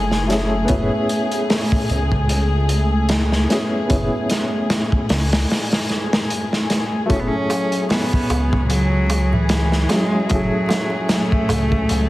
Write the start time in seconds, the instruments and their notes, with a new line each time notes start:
Already playing: detuned saw bass F#1, upright piano A3 C#4 E4 G#4, string section A3 G#4
0.11 snare
0.28 upright piano A3 C#4 E4, snare, closed hi-hat
0.33 upright piano G#4
0.65 upright piano B3 C#4, closed hi-hat
0.70 detuned saw bass F#1, upright piano E4, kick
0.74 upright piano G#4
1.09 closed hi-hat
1.32 closed hi-hat
1.50 snare, open hi-hat
1.72 kick
1.90 detuned saw bass C#2, closed hi-hat
2.12 kick
2.29 closed hi-hat
2.69 closed hi-hat
3.09 snare, closed hi-hat
3.32 snare
3.48 upright piano B3 C#4 E4, snare, closed hi-hat
3.52 upright piano G#4
3.87 detuned saw bass F#1, upright piano B3 C#4, kick, closed hi-hat
3.93 upright piano E4 G#4
4.30 snare, closed hi-hat
4.70 snare, closed hi-hat
4.92 kick
5.09 detuned saw bass C#2, snare, open hi-hat
5.32 snare, open hi-hat
5.50 snare, open hi-hat
5.72 snare, open hi-hat
5.89 snare, closed hi-hat
6.13 snare
6.30 closed hi-hat
6.53 snare
6.70 snare, closed hi-hat
7.06 upright piano A3 C#4
7.10 detuned saw bass F#1, string section F#3 G#4, cello C#4, upright piano E4, kick, closed hi-hat, darbuka tek
7.16 cello B3, upright piano G#4
7.28 cello C#4
7.50 closed hi-hat, darbuka tek
7.72 closed hi-hat, darbuka tek
7.89 cello B3, snare, open hi-hat, darbuka tek
8.13 kick
8.30 detuned saw bass C#2, closed hi-hat, darbuka tek
8.53 kick, darbuka tek
8.70 cello F#3, closed hi-hat, darbuka tek
9.10 closed hi-hat, darbuka tek
9.32 cello E3, darbuka tek, darbuka dum
9.49 snare, closed hi-hat, darbuka tek
9.72 snare
9.89 upright piano F#3 C#4 E4, cello G#3, snare, closed hi-hat, darbuka tek
9.93 upright piano G#4
10.12 darbuka tek
10.26 upright piano A3 C#4, closed hi-hat, darbuka tek
10.31 detuned saw bass F#1, cello F#3, upright piano E4, kick
10.35 upright piano G#4
10.69 snare, closed hi-hat, darbuka tek
10.90 darbuka tek
11.09 cello A3, snare, closed hi-hat, darbuka tek
11.32 kick
11.49 detuned saw bass C#2, closed hi-hat, darbuka tek, darbuka dum
11.72 kick, darbuka tek
11.89 detuned saw bass C#2, closed hi-hat, darbuka tek